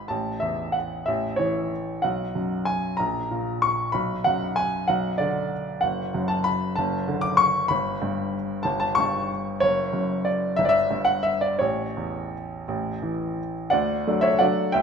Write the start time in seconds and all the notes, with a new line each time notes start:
0.08 A1 A5
0.40 E2 E5
0.72 F#5
1.06 A1 E5
1.36 E3 C#5
2.02 B1 F#5
2.35 F#2
2.65 G#5
2.97 A#1 A#5
3.31 A#2
3.62 C#6
3.92 B1 B5
4.24 F#2 F#5
4.56 G#5
4.88 B1 F#5
5.18 D3 D5
5.81 F#1 F#5
6.14 F#2
6.28 A5
6.44 B5
6.76 F#1 A5
7.08 D3
7.21 D6
7.37 C#6
7.68 G1 B5
8.02 G2
8.63 G1 A5
8.80 A5
8.95 G2 C#6
9.60 F#1 C#5
9.93 F#2
10.25 D5
10.56 G1 E5
10.65 D5 E5
10.91 G2
11.05 F#5
11.23 E5
11.41 D5
11.59 A1 C#5
11.97 E2
12.68 A1
13.03 E3
13.70 D2 D5 F#5
14.07 F#3 A3 D4
14.21 C#5 E5
14.39 F#3 A3 D4 D5 F#5
14.72 D2 E5 G5